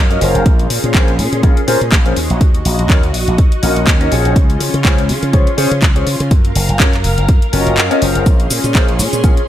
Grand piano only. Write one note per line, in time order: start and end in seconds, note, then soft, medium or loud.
0.10 0.18 C#4 medium
0.10 0.18 F4 medium
0.10 0.19 F#4 medium
0.10 0.19 A#4 medium
0.10 0.19 D#5 loud
0.21 0.92 C#4 medium
0.21 0.92 F4 medium
0.21 0.92 G#4 medium
0.21 0.92 A#4 medium
0.21 0.92 C5 medium
0.94 1.10 C#4 medium
0.94 1.10 F4 medium
0.94 1.10 G#4 medium
0.94 1.10 A#4 medium
0.94 1.10 C5 loud
1.43 1.58 C#4 medium
1.43 1.59 F4 medium
1.43 1.59 G#4 medium
1.43 1.59 A#4 medium
1.43 1.59 C#5 medium
1.67 1.77 C#4 medium
1.67 1.77 F4 medium
1.67 1.78 G#4 medium
1.67 1.78 A#4 medium
1.67 1.78 C5 loud
2.05 2.13 C#4 medium
2.05 2.13 F4 medium
2.05 2.13 G#4 medium
2.05 2.14 A#4 medium
2.05 2.14 C5 medium
2.89 2.99 C#4 medium
2.89 2.99 D#4 medium
2.89 3.00 F#4 medium
2.89 3.00 A#4 medium
2.89 3.00 C#5 loud
3.62 3.97 C#4 medium
3.62 3.97 D#4 medium
3.62 3.98 F#4 medium
3.62 3.98 A#4 medium
3.62 3.98 D#5 medium
4.00 4.08 C#4 medium
4.00 4.09 D#4 medium
4.00 4.09 F#4 medium
4.00 4.09 A#4 medium
4.00 4.09 D#5 loud
4.11 4.82 C#4 medium
4.11 4.82 F4 medium
4.11 4.82 G#4 medium
4.11 4.82 C5 medium
4.11 4.83 C#5 medium
4.84 5.00 C#4 medium
4.84 5.00 F4 medium
4.84 5.00 G#4 medium
4.84 5.00 C5 medium
4.84 5.00 C#5 loud
5.33 5.49 C#4 medium
5.33 5.49 F4 medium
5.33 5.49 G#4 medium
5.33 5.49 C5 medium
5.33 5.49 C#5 medium
5.57 5.68 C#4 loud
5.57 5.68 F4 medium
5.57 5.68 G#4 medium
5.57 5.68 C5 medium
5.57 5.68 C#5 loud
5.95 6.03 C#4 medium
5.95 6.04 F4 medium
5.95 6.04 G#4 medium
5.95 6.04 C5 medium
5.95 6.04 C#5 medium
6.79 6.90 C#4 medium
6.79 6.90 F4 medium
6.79 6.90 F#4 medium
6.79 6.90 A#4 medium
6.79 6.90 C#5 loud
7.53 7.88 C#4 medium
7.53 7.88 F4 medium
7.53 7.88 F#4 medium
7.53 7.88 A#4 medium
7.53 7.88 D#5 medium
7.91 7.99 C#4 medium
7.91 7.99 F4 medium
7.91 7.99 F#4 medium
7.91 7.99 A#4 medium
7.91 7.99 D#5 loud
8.01 8.72 C#4 medium
8.01 8.72 F4 medium
8.01 8.72 G#4 medium
8.01 8.73 A#4 medium
8.01 8.73 C5 medium
8.75 8.90 C#4 medium
8.75 8.90 F4 medium
8.75 8.90 G#4 medium
8.75 8.91 A#4 medium
8.75 8.91 C5 loud
9.23 9.39 C#4 medium
9.23 9.39 F4 medium
9.23 9.39 G#4 medium
9.23 9.39 A#4 medium
9.23 9.39 C#5 medium